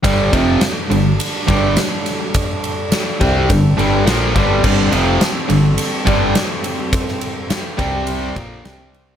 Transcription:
<<
  \new Staff \with { instrumentName = "Analog synth pad" } { \time 4/4 \key g \minor \tempo 4 = 105 << { <g a'>1~ | <g a'>1~ | <g a'>1~ | <g a'>4. d''4 <g a'>8 <c' d''>4 | } \\ { d'1~ | d'2 c'2~ | c'1~ | c'4. g'4 d'8 g'4 | } >> }
  \new Staff \with { instrumentName = "Overdriven electric guitar" } { \clef bass \time 4/4 \key g \minor <g, d g>8 <f, c f>8 r8 <g, d>8 r8 <g, d g>8 r4 | r4. <c g c'>8 <g, d>8 <g, d g>8 <bes, f bes>8 <g, d g>8 | <g, d g>8 <f, c f>8 r8 <g, d>8 r8 <g, d g>8 r4 | r4. <c g c'>4 <bes, f bes>8 <c g c'>4 | }
  \new Staff \with { instrumentName = "Fingered electric bass" } { \clef bass \time 4/4 \key g \minor g,,8 f,,8 r8 g,,8 r8 g,,8 r4 | r4. c,8 g,,8 g,,8 bes,,8 g,,8 | g,,8 f,,8 r8 g,,8 r8 g,,8 r4 | r4. c,4 bes,,8 c,4 | }
  \new DrumStaff \with { instrumentName = "Drums" } \drummode { \time 4/4 <bd cymr>8 <bd cymr>8 <cymr sn>8 cymr8 cymr8 <bd cymr>8 <cymr sn>8 <cymr sn>8 | <bd cymr>8 cymr8 <cymr sn>8 <bd cymr>8 <bd cymr>8 cymr8 <cymr sn>8 <bd cymr>8 | <cymc bd>8 cymr8 <cymr sn>8 cymr8 cymr8 <bd cymr>8 <cymr sn>8 cymr8 | <bd cymr>16 sn16 cymr8 <cymr sn>8 <bd cymr>8 cymr8 <bd cymr>8 <cymr sn>8 cymr8 | }
>>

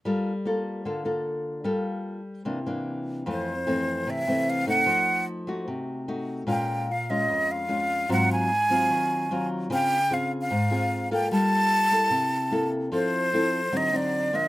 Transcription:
<<
  \new Staff \with { instrumentName = "Flute" } { \time 4/4 \key f \major \tempo 4 = 149 r1 | r1 | c''2 e''4 f''8 ges''8~ | ges''4 r2. |
g''4 f''8 ees''4 f''4. | ges''8 aes''2. r8 | g''4 \tuplet 3/2 { f''8. r16 f''8~ } f''4. g''8 | a''2.~ a''8 r8 |
c''2 ees''8 d''4 ees''8 | }
  \new Staff \with { instrumentName = "Nylon-string guitar" } { \time 4/4 \key f \major << { <bes f' a'>8 r8 <bes f' a'>4 <bes f' a'>8 <bes f' a'>4. | <bes f' a'>4. r8 <e bes d'>8 <e bes d'>4. | <e a c'>8 r8 <e a c'>4. <e a c'>4 <a ees'>8~ | <a ees'>4. <a ees' ges'>4. <a ees' ges'>4 |
<aes des' f'>4 r8 <aes des' f'>4. <aes des' f'>4 | <ges c' f'>4 r8 <ges c' f'>4. <ges c' f'>4 | <c' f' aes'>8 r8 <c' f' aes'>4 r8 <c' f' aes'>4 <bes f' a'>8~ | <bes f' a'>4. <bes e' a'>4. <bes e' a'>4 |
<c' e' a'>4 <c' e' a'>8 r8 <fis c' ees'>8 <fis c' ees'>4 <f bes d'>8 | } \\ { g2 d2 | g2 c2 | f,2 c2 | f2 c2 |
bes,2 f,2 | aes,2 ees2 | des2 aes,2 | g2 c2 |
f2 d2 | } >> }
>>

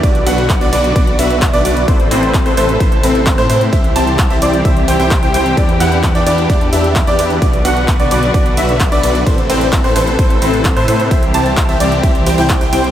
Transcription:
<<
  \new Staff \with { instrumentName = "Grand piano" } { \time 4/4 \key b \phrygian \tempo 4 = 130 d''8 fis''8. d''16 d''8 d''8 e''8. d''16 d''8 | c''8 c'8. c''16 c''8 c''8 c'8. c''16 c''8 | e''8 a''8. e''16 d''8 e''8 g''16 g''8 g''16 g''8 | d''8 fis''8. d''16 d''8 d''8 e''8. d''16 d''8 |
d''8 fis''8. d''16 d''8 d''8 e''8. d''16 d''8 | c''8 c'8. c''16 c''8 c''8 c'8. c''16 c''8 | e''8 a''8. e''16 d''8 e''8 g''16 g''8 g''16 g''8 | }
  \new Staff \with { instrumentName = "Supersaw synth" } { \time 4/4 \key b \phrygian <b d' fis' b' d''>8 <b d' fis' b' fis''>8. <b d' fis' b' d''>16 <b d' fis' b' d''>8 <b d' fis' b' d''>8 <b d' fis' b' e''>8. <b d' fis' b' d''>16 <b d' fis' b' d''>8 | <c' e' a' b' c''>8 <c' e' a' b' c''>8. <c' e' a' b' c''>16 <c' e' a' b' c''>8 <c' e' a' b' c''>8 <c' e' a' b' c''>8. <c' e' a' b' c''>16 <c' e' a' b' c''>8 | <c' e' g' c'' e''>8 <c' e' g' c'' a''>8. <c' e' g' c'' e''>16 <c' e' g' c'' d''>8 <c' e' g' c'' e''>8 <c' e' g' c'' g''>16 <c' e' g' c'' g''>8 <c' e' g' c'' g''>16 <c' e' g' c'' g''>8 | <d' e' g' b' d''>8 <d' e' g' b' fis''>8. <d' e' g' b' d''>16 <d' e' g' b' d''>8 <d' e' g' b' d''>8 <d' e' g' b' e''>8. <d' e' g' b' d''>16 <d' e' g' b' d''>8 |
<b d' fis' b' d''>8 <b d' fis' b' fis''>8. <b d' fis' b' d''>16 <b d' fis' b' d''>8 <b d' fis' b' d''>8 <b d' fis' b' e''>8. <b d' fis' b' d''>16 <b d' fis' b' d''>8 | <c' e' a' b' c''>8 <c' e' a' b' c''>8. <c' e' a' b' c''>16 <c' e' a' b' c''>8 <c' e' a' b' c''>8 <c' e' a' b' c''>8. <c' e' a' b' c''>16 <c' e' a' b' c''>8 | <c' e' c'' e''>8 <c' e' g' c'' a''>8. <c' e' g' c'' e''>16 <c' e' g' c'' d''>8 <c' e' g' c'' e''>8 <c' e' g' c'' g''>16 <c' e' g' c'' g''>8 <c' e' g' c'' g''>16 <c' e' g' c'' g''>8 | }
  \new Staff \with { instrumentName = "String section" } { \time 4/4 \key b \phrygian << { <d fis'>1 | <c a'>1 | <e g'>1~ | <e g'>1 |
<d fis'>1 | <c a'>1 | <e g'>1 | } \\ { r1 | r1 | c'1 | d'1 |
r1 | r1 | c'1 | } >> }
  \new Staff \with { instrumentName = "Detuned saw bass" } { \clef bass \time 4/4 \key b \phrygian b,,8 b,,8. b,,16 b,,8 b,,8 b,,8. b,,16 b,,8 | a,,8 a,,8. a,,16 a,,8 r8 a,,8. a,16 a,8 | c,8 c,8. c,16 c,8 c,8 c,16 c,8 c,16 c,8 | e,8 e,8. e,16 e,8 e,8 e,8. e,16 e,8 |
b,,8 b,,8. b,,16 b,,8 r8 b,,8. b,,16 b,,8 | r8 a,,8. a,,16 a,,8 a,,8 a,,8. a,16 a,8 | c,8 c,8. c,16 c,8 c,8 c,16 c,8 c,16 c,8 | }
  \new DrumStaff \with { instrumentName = "Drums" } \drummode { \time 4/4 <hh bd cymr>16 hh16 <hho cymr>16 hh16 <hc hh bd cymr>16 hh16 <hho cymr>16 hh16 <hh bd cymr>16 hh16 <hho cymr>16 hh16 <hc hh bd cymr>16 hh16 <hho cymr>16 hh16 | <hh bd cymr>16 hh16 <hho cymr>16 hh16 <hc hh bd cymr>16 hh16 <hho cymr>16 hh16 <hh bd cymr>16 hh16 <hho cymr>16 hh16 <hc hh bd cymr>16 hh16 <hho cymr>16 hh16 | <hh bd cymr>16 hh16 <hho cymr>16 hh16 <hc hh bd cymr>16 hh16 <hho cymr>16 hh16 <hh bd cymr>16 hh16 <hho cymr>16 hh16 <hc hh bd cymr>16 hh16 <hho cymr>16 hh16 | <hh bd cymr>16 hh16 <hho cymr>16 hh16 <hc hh bd cymr>16 hh16 <hho cymr>16 hh16 <hh bd cymr>16 hh16 <hho cymr>16 hh16 <hc hh bd cymr>16 hh16 <hho cymr>16 hh16 |
<hh bd cymr>16 hh16 <hho cymr>16 hh16 <hc hh bd cymr>16 hh16 <hho cymr>16 hh16 <hh bd cymr>16 hh16 <hho cymr>16 hh16 <hc hh bd cymr>16 hh16 <hho cymr>16 hh16 | <hh bd cymr>16 hh16 <hho cymr>16 hh16 <hc hh bd cymr>16 hh16 <hho cymr>16 hh16 <hh bd cymr>16 hh16 <hho cymr>16 hh16 <hc hh bd cymr>16 hh16 <hho cymr>16 hh16 | <hh bd cymr>16 hh16 <hho cymr>16 hh16 <hc hh bd cymr>16 hh16 <hho cymr>16 hh16 <hh bd cymr>16 hh16 <hho cymr>16 hh16 <hc hh bd cymr>16 hh16 <hho cymr>16 hh16 | }
>>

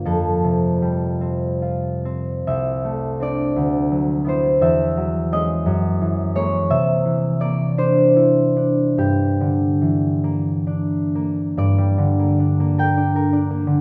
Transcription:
<<
  \new Staff \with { instrumentName = "Harp" } { \time 6/8 \key g \dorian \tempo 4. = 53 <a' f''>2. | e''4 d''4. c''8 | e''4 ees''4. cis''8 | e''4 d''8 c''4. |
g'2. | d''4. g''4. | }
  \new Staff \with { instrumentName = "Harp" } { \time 6/8 \key g \dorian <f, g f'>8 c8 g8 c'8 f'8 c'8 | c,8 a8 <c' d'>8 d,8 fis8 <b e'>8 | e,8 fis8 <gis cis'>8 fis,8 e8 <gis ais>8 | c8 e8 bes8 d'8 e'8 d'8 |
g,8 d8 e8 bes8 d'8 bes8 | g,16 g16 d16 bes16 d'16 bes16 bes'16 d'16 bes'16 d'16 bes16 d16 | }
>>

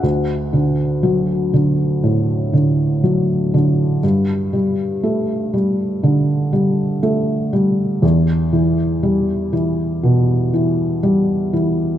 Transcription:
\new Staff \with { instrumentName = "Felt piano" } { \clef bass \time 4/4 \key d \major \tempo 4 = 60 d,8 d8 fis8 d8 a,8 d8 fis8 d8 | g,8 g8 a8 g8 d8 g8 a8 g8 | e,8 e8 g8 e8 b,8 e8 g8 e8 | }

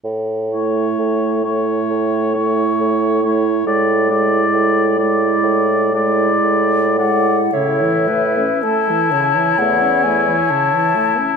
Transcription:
<<
  \new Staff \with { instrumentName = "Flute" } { \time 4/4 \key a \major \tempo 4 = 65 r1 | r2. r8 fis''8 | e''4 a''4 fis''8 gis''8 a''4 | }
  \new Staff \with { instrumentName = "Oboe" } { \time 4/4 \key a \major r8 cis''4 cis''4 cis''4 cis''8 | d''8 d''4 d''4 d''4 d''8 | e'1 | }
  \new Staff \with { instrumentName = "Clarinet" } { \time 4/4 \key a \major r8 e'4 e'4 e'4 e'8 | e'8 e'4 e'4 e'4 e'8 | cis''8 b'8 a'8 cis''2~ cis''8 | }
  \new Staff \with { instrumentName = "French horn" } { \clef bass \time 4/4 \key a \major r8 a4 a4 a4 a8 | gis8 gis4 gis4 gis4 gis8 | cis16 e16 a16 cis'16 a16 e16 cis16 e16 a16 cis'16 a16 e16 cis16 e16 a16 cis'16 | }
  \new Staff \with { instrumentName = "Bassoon" } { \clef bass \time 4/4 \key a \major a,4 a,4 a,4 a,4 | a,4 a,4 a,4 a,4 | a,4 r4 e,4 r4 | }
>>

